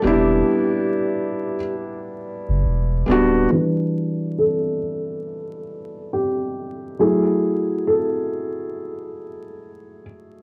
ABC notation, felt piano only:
X:1
M:4/4
L:1/8
Q:"Swing 16ths" 1/4=69
K:Em
V:1 name="Felt piano"
[G,B,DE]3 z4 [G,B,DF] | B2 A4 G2 | ^G2 A4- A z |]
V:2 name="Felt piano" clef=bass
z8 | [E,G,D]3 z4 z | [F,A,E]8 |]